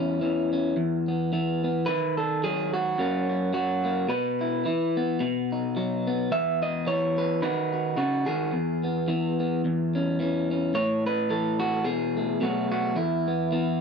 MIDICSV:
0, 0, Header, 1, 2, 480
1, 0, Start_track
1, 0, Key_signature, 4, "major"
1, 0, Tempo, 554017
1, 1624, Time_signature, 4, 2, 24, 8
1, 11963, End_track
2, 0, Start_track
2, 0, Title_t, "Clean electric guitar"
2, 0, Program_c, 0, 27
2, 0, Note_on_c, 0, 40, 72
2, 0, Note_on_c, 0, 61, 46
2, 0, Note_on_c, 0, 64, 73
2, 181, Note_off_c, 0, 61, 0
2, 185, Note_on_c, 0, 52, 53
2, 191, Note_on_c, 0, 61, 46
2, 447, Note_off_c, 0, 61, 0
2, 458, Note_on_c, 0, 61, 43
2, 642, Note_off_c, 0, 61, 0
2, 652, Note_off_c, 0, 40, 0
2, 663, Note_on_c, 0, 40, 74
2, 937, Note_on_c, 0, 59, 40
2, 1140, Note_off_c, 0, 52, 0
2, 1144, Note_off_c, 0, 59, 0
2, 1150, Note_on_c, 0, 52, 53
2, 1155, Note_on_c, 0, 59, 41
2, 1410, Note_off_c, 0, 59, 0
2, 1420, Note_on_c, 0, 59, 43
2, 1604, Note_off_c, 0, 59, 0
2, 1611, Note_on_c, 0, 71, 105
2, 1618, Note_off_c, 0, 64, 0
2, 1623, Note_off_c, 0, 40, 0
2, 1627, Note_off_c, 0, 52, 0
2, 1632, Note_on_c, 0, 51, 75
2, 1880, Note_off_c, 0, 71, 0
2, 1883, Note_on_c, 0, 69, 81
2, 2101, Note_off_c, 0, 69, 0
2, 2111, Note_on_c, 0, 54, 58
2, 2113, Note_on_c, 0, 68, 84
2, 2366, Note_off_c, 0, 68, 0
2, 2370, Note_on_c, 0, 66, 87
2, 2562, Note_off_c, 0, 51, 0
2, 2562, Note_off_c, 0, 54, 0
2, 2584, Note_on_c, 0, 42, 75
2, 2591, Note_on_c, 0, 54, 52
2, 2597, Note_on_c, 0, 58, 46
2, 2607, Note_on_c, 0, 61, 50
2, 2842, Note_off_c, 0, 61, 0
2, 2853, Note_on_c, 0, 61, 42
2, 3052, Note_off_c, 0, 54, 0
2, 3054, Note_off_c, 0, 66, 0
2, 3061, Note_on_c, 0, 54, 55
2, 3068, Note_on_c, 0, 66, 76
2, 3323, Note_off_c, 0, 58, 0
2, 3333, Note_on_c, 0, 58, 42
2, 3517, Note_off_c, 0, 54, 0
2, 3518, Note_off_c, 0, 42, 0
2, 3520, Note_off_c, 0, 58, 0
2, 3540, Note_on_c, 0, 47, 74
2, 3544, Note_off_c, 0, 66, 0
2, 3546, Note_off_c, 0, 61, 0
2, 3547, Note_on_c, 0, 71, 75
2, 3819, Note_on_c, 0, 64, 47
2, 4023, Note_off_c, 0, 47, 0
2, 4026, Note_off_c, 0, 64, 0
2, 4032, Note_on_c, 0, 52, 50
2, 4040, Note_on_c, 0, 64, 37
2, 4305, Note_on_c, 0, 59, 41
2, 4484, Note_off_c, 0, 64, 0
2, 4508, Note_off_c, 0, 52, 0
2, 4509, Note_on_c, 0, 47, 71
2, 4785, Note_on_c, 0, 63, 44
2, 4988, Note_off_c, 0, 63, 0
2, 4994, Note_on_c, 0, 54, 53
2, 4998, Note_on_c, 0, 63, 43
2, 5260, Note_off_c, 0, 59, 0
2, 5263, Note_on_c, 0, 59, 45
2, 5443, Note_off_c, 0, 54, 0
2, 5445, Note_off_c, 0, 63, 0
2, 5464, Note_off_c, 0, 71, 0
2, 5467, Note_off_c, 0, 47, 0
2, 5471, Note_on_c, 0, 40, 75
2, 5476, Note_on_c, 0, 76, 97
2, 5733, Note_off_c, 0, 76, 0
2, 5740, Note_on_c, 0, 75, 79
2, 5948, Note_on_c, 0, 52, 60
2, 5950, Note_off_c, 0, 75, 0
2, 5956, Note_on_c, 0, 73, 97
2, 5978, Note_off_c, 0, 59, 0
2, 6221, Note_on_c, 0, 71, 80
2, 6419, Note_off_c, 0, 71, 0
2, 6427, Note_off_c, 0, 52, 0
2, 6428, Note_off_c, 0, 40, 0
2, 6428, Note_off_c, 0, 73, 0
2, 6429, Note_on_c, 0, 51, 66
2, 6432, Note_on_c, 0, 71, 81
2, 6435, Note_on_c, 0, 63, 47
2, 6441, Note_on_c, 0, 66, 47
2, 6688, Note_off_c, 0, 66, 0
2, 6698, Note_on_c, 0, 66, 41
2, 6896, Note_off_c, 0, 66, 0
2, 6902, Note_off_c, 0, 51, 0
2, 6906, Note_off_c, 0, 71, 0
2, 6906, Note_on_c, 0, 49, 58
2, 6909, Note_on_c, 0, 66, 68
2, 7158, Note_on_c, 0, 68, 77
2, 7170, Note_off_c, 0, 49, 0
2, 7173, Note_on_c, 0, 51, 59
2, 7364, Note_off_c, 0, 63, 0
2, 7385, Note_off_c, 0, 66, 0
2, 7386, Note_off_c, 0, 51, 0
2, 7388, Note_on_c, 0, 40, 73
2, 7659, Note_on_c, 0, 59, 43
2, 7866, Note_on_c, 0, 52, 60
2, 7867, Note_off_c, 0, 59, 0
2, 7877, Note_on_c, 0, 59, 42
2, 8135, Note_off_c, 0, 59, 0
2, 8145, Note_on_c, 0, 59, 48
2, 8326, Note_off_c, 0, 59, 0
2, 8346, Note_off_c, 0, 40, 0
2, 8361, Note_on_c, 0, 40, 67
2, 8621, Note_on_c, 0, 61, 44
2, 8825, Note_off_c, 0, 52, 0
2, 8830, Note_off_c, 0, 61, 0
2, 8836, Note_on_c, 0, 52, 59
2, 8845, Note_on_c, 0, 61, 43
2, 9096, Note_off_c, 0, 61, 0
2, 9107, Note_on_c, 0, 61, 44
2, 9287, Note_off_c, 0, 61, 0
2, 9299, Note_off_c, 0, 68, 0
2, 9306, Note_off_c, 0, 40, 0
2, 9310, Note_on_c, 0, 45, 78
2, 9313, Note_on_c, 0, 73, 101
2, 9573, Note_off_c, 0, 73, 0
2, 9586, Note_on_c, 0, 71, 91
2, 9780, Note_off_c, 0, 52, 0
2, 9789, Note_on_c, 0, 52, 56
2, 9795, Note_on_c, 0, 69, 77
2, 10044, Note_off_c, 0, 71, 0
2, 10048, Note_on_c, 0, 66, 81
2, 10240, Note_off_c, 0, 45, 0
2, 10262, Note_off_c, 0, 69, 0
2, 10263, Note_off_c, 0, 66, 0
2, 10263, Note_on_c, 0, 47, 78
2, 10266, Note_on_c, 0, 68, 83
2, 10543, Note_on_c, 0, 57, 43
2, 10742, Note_off_c, 0, 47, 0
2, 10746, Note_off_c, 0, 52, 0
2, 10750, Note_off_c, 0, 57, 0
2, 10752, Note_on_c, 0, 47, 60
2, 10757, Note_on_c, 0, 54, 46
2, 10764, Note_on_c, 0, 57, 44
2, 10770, Note_on_c, 0, 66, 47
2, 11014, Note_off_c, 0, 66, 0
2, 11017, Note_on_c, 0, 66, 80
2, 11222, Note_off_c, 0, 68, 0
2, 11226, Note_on_c, 0, 40, 73
2, 11227, Note_off_c, 0, 47, 0
2, 11227, Note_off_c, 0, 66, 0
2, 11232, Note_on_c, 0, 64, 74
2, 11233, Note_off_c, 0, 57, 0
2, 11252, Note_off_c, 0, 54, 0
2, 11504, Note_on_c, 0, 59, 46
2, 11710, Note_off_c, 0, 59, 0
2, 11716, Note_on_c, 0, 52, 59
2, 11720, Note_on_c, 0, 59, 47
2, 11963, Note_off_c, 0, 40, 0
2, 11963, Note_off_c, 0, 52, 0
2, 11963, Note_off_c, 0, 59, 0
2, 11963, Note_off_c, 0, 64, 0
2, 11963, End_track
0, 0, End_of_file